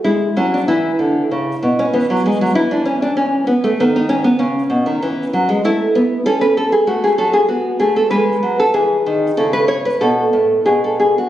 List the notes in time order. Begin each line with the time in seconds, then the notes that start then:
0.04 G#3 E4
0.37 F#3 C#4
0.54 D4
0.68 E3 E4
0.99 D3
1.31 C#3
1.63 B2
1.79 C#4
1.93 E3 B3
2.10 F#3
2.26 G#3
2.41 F#3
2.55 E3 E4
2.71 D4
2.85 C#4
3.02 D4
3.17 C#4
3.47 B3
3.64 A3
3.80 D#3 B3
3.96 D#4
4.09 C#4
4.24 B3
4.39 C#3 C#4
4.70 B2
4.86 D#3
5.02 E3
5.33 F#3
5.49 G#3
5.64 A3 E4
5.95 B3
6.26 C#4 A4
6.41 B4
6.57 A4
6.72 G#4
6.87 A3 F#4
7.04 G#4
7.18 F#3 A4
7.33 G#4
7.48 B3 F#4
7.80 A3 G#4
7.96 A4
8.11 G#3 B4
8.43 F#3
8.60 A4
8.74 E3 G#4
9.06 D#3
9.37 C#3 E4 A4
9.53 B4
9.68 C#5
9.85 B4
10.01 B2 A4
10.33 A2
10.65 B2 G#4
10.84 A4
11.00 G#4
11.18 F#4